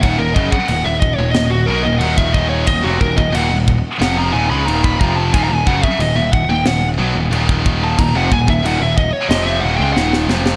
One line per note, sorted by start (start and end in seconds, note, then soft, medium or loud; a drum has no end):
0.01 0.19 D#1 medium
0.01 0.19 D#2 loud
0.01 0.19 A#2 loud
0.01 0.18 F#5 loud
0.01 kick loud
0.01 crash medium
0.18 0.35 D#1 medium
0.18 0.36 D#2 medium
0.18 0.37 A#2 medium
0.18 0.35 A#4 medium
0.34 0.51 F#1 loud
0.34 0.52 F#2 medium
0.34 0.53 C#3 loud
0.34 0.51 D#5 loud
0.34 kick medium
0.51 0.67 F#5 medium
0.51 muted picked electric bass stroke soft
0.51 muted distorted electric guitar stroke medium
0.51 kick medium
0.68 0.85 D#1 medium
0.68 0.84 D#2 medium
0.68 0.84 A#2 medium
0.68 0.85 F#5 medium
0.68 crash medium
0.85 1.16 D#1 medium
0.85 1.12 D#2 medium
0.85 1.12 A#2 medium
0.85 1.00 E5 medium
1.00 1.16 D#5 loud
1.00 kick loud
1.16 1.34 D#1 medium
1.16 1.35 D#2 medium
1.16 1.36 A#2 medium
1.16 1.31 C#5 medium
1.31 1.49 D#5 loud
1.31 snare loud
1.31 crash medium
1.35 1.66 D#1 medium
1.35 1.63 D#2 medium
1.35 1.63 A#2 medium
1.50 1.67 F#4 medium
1.66 1.84 B1 medium
1.66 1.83 A#4 loud
1.70 1.85 B2 loud
1.70 1.85 F#3 medium
1.83 2.01 D#1 medium
1.83 2.00 D#5 medium
1.87 2.02 D#2 medium
1.87 2.03 A#2 medium
1.99 2.64 D#1 loud
1.99 2.66 D#3 loud
1.99 2.16 F#5 loud
1.99 crash medium
2.03 2.68 D#2 loud
2.03 2.68 A#2 loud
2.03 2.68 D#3 loud
2.17 2.33 E5 loud
2.17 kick loud
2.34 2.49 D#5 loud
2.34 kick medium
2.49 2.66 C#5 medium
2.66 2.83 D#1 medium
2.66 2.85 D#2 medium
2.66 2.85 A#2 medium
2.66 2.83 D#5 loud
2.66 kick loud
2.66 crash medium
2.84 3.00 F1 medium
2.84 3.00 F2 medium
2.84 3.01 C3 loud
2.84 3.00 F#4 medium
3.00 3.16 D#1 medium
3.00 3.16 D#2 medium
3.00 3.17 A#2 medium
3.00 3.17 A#4 loud
3.00 kick medium
3.17 3.33 D#1 medium
3.17 3.31 D#2 medium
3.17 3.32 A#2 medium
3.17 3.33 D#5 medium
3.17 kick medium
3.33 3.50 D#1 loud
3.33 3.49 D#2 loud
3.33 3.50 A#2 loud
3.33 3.55 F#5 loud
3.33 crash medium
3.50 3.82 D#1 medium
3.50 3.77 D#2 medium
3.50 3.78 A#2 medium
3.68 kick loud
4.00 4.32 F1 medium
4.00 4.32 F2 loud
4.00 4.33 C3 loud
4.00 4.33 F3 loud
4.00 4.17 F#5 medium
4.00 snare loud
4.00 crash medium
4.18 4.33 A#5 loud
4.33 4.49 D#1 medium
4.33 4.49 D#2 medium
4.33 4.49 A#2 loud
4.33 4.50 G#5 medium
4.50 4.66 C#2 loud
4.50 4.66 C#3 medium
4.50 4.66 G#3 loud
4.50 4.66 B5 loud
4.66 4.99 D#1 loud
4.66 4.99 D#2 loud
4.66 4.99 A#2 loud
4.66 5.00 D#3 loud
4.66 4.83 A#5 medium
4.66 crash medium
4.83 5.00 B5 loud
4.83 kick loud
5.01 5.31 F1 medium
5.01 5.32 F2 medium
5.01 5.33 C3 medium
5.01 5.33 F3 loud
5.01 5.16 A#5 loud
5.01 kick medium
5.16 5.32 A5 loud
5.33 5.49 D#1 medium
5.33 5.50 D#2 loud
5.33 5.50 A#2 loud
5.33 5.43 G#5 medium
5.33 kick loud
5.33 crash medium
5.44 5.55 A#5 loud
5.51 5.66 D#1 medium
5.51 5.67 D#2 medium
5.51 5.67 A#2 medium
5.51 5.66 G#5 loud
5.67 5.82 F#1 loud
5.67 5.83 F#2 loud
5.67 5.83 C#3 loud
5.67 5.84 F#5 loud
5.67 kick medium
5.83 5.99 E5 medium
5.83 muted picked electric bass stroke soft
5.83 muted distorted electric guitar stroke medium
5.83 kick medium
5.99 6.15 D#1 medium
5.99 6.16 D#2 medium
5.99 6.16 A#2 medium
5.99 6.17 D#5 medium
5.99 crash medium
6.16 6.47 D#1 medium
6.16 6.43 D#2 medium
6.16 6.43 A#2 medium
6.16 6.32 E5 loud
6.33 6.49 F#5 loud
6.33 kick medium
6.49 6.65 D#1 medium
6.49 6.66 D#2 medium
6.49 6.67 A#2 medium
6.49 6.65 G5 loud
6.66 6.97 D#1 medium
6.66 6.93 D#2 medium
6.66 6.93 A#2 medium
6.66 6.87 F#5 medium
6.66 snare loud
6.66 crash medium
6.99 7.14 B1 loud
6.99 7.15 B2 loud
6.99 7.15 F#3 loud
7.16 7.31 D#1 medium
7.16 7.31 D#2 medium
7.16 7.32 A#2 medium
7.32 7.94 D#1 loud
7.32 7.98 D#2 loud
7.32 7.98 A#2 loud
7.32 7.98 D#3 loud
7.32 crash medium
7.49 kick medium
7.66 kick medium
7.84 8.00 A5 loud
7.99 8.14 D#1 medium
7.99 8.15 D#2 medium
7.99 8.15 A#2 medium
7.99 8.15 A#5 loud
7.99 kick loud
7.99 crash medium
8.14 8.30 F1 medium
8.14 8.31 F2 medium
8.14 8.31 C3 loud
8.14 8.32 F#5 loud
8.32 8.47 D#1 medium
8.32 8.47 D#2 medium
8.32 8.48 A#2 medium
8.32 8.48 G#5 loud
8.32 kick medium
8.48 8.64 D#1 medium
8.48 8.64 D#2 medium
8.48 8.64 A#2 medium
8.48 8.65 E5 medium
8.48 kick medium
8.64 8.80 D#1 loud
8.64 8.80 D#2 loud
8.64 8.81 A#2 loud
8.64 8.81 F#5 loud
8.64 crash medium
8.80 9.11 D#1 medium
8.80 9.08 D#2 medium
8.80 9.08 A#2 medium
8.80 8.97 E5 medium
8.98 9.13 D#5 loud
8.98 kick medium
9.13 9.29 C#5 medium
9.29 9.61 F1 loud
9.29 9.62 F2 loud
9.29 9.63 C3 loud
9.29 9.64 F3 loud
9.29 9.46 D#5 medium
9.29 snare loud
9.29 crash medium
9.46 9.62 E5 loud
9.60 9.79 D#1 loud
9.60 9.79 D#2 medium
9.60 9.79 A#2 loud
9.60 9.76 F#5 medium
9.77 9.95 C#2 loud
9.77 9.95 C#3 medium
9.77 9.95 G#3 loud
9.77 9.93 G5 loud
9.93 10.27 D#1 loud
9.93 10.28 D#2 loud
9.93 10.29 D#3 loud
9.93 10.14 F#5 loud
9.93 snare medium
9.97 10.29 A#2 loud
10.13 snare medium
10.28 10.56 F1 medium
10.28 10.56 F2 loud
10.28 10.56 C3 loud
10.28 10.56 F3 loud
10.28 snare medium
10.46 snare loud